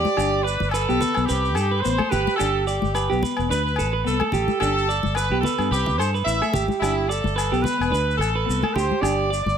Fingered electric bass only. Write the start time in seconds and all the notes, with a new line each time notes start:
0.18 G1
0.61 G1
0.89 B1
1.17 B1
1.30 C2
1.56 G2
1.86 A1
2.13 G#1
2.40 G1
2.83 G1
3.12 B1
3.39 E1
3.51 D2
3.79 A1
4.06 C2
4.33 A1
4.61 G1
5.05 G1
5.30 B1
5.59 G2
5.71 C2
5.99 G2
6.26 A1
6.54 G#1
6.82 G1
7.25 G1
7.52 B1
7.80 E1
7.91 D2
8.18 A1
8.49 C2
8.76 D2
9.02 G1
9.46 G1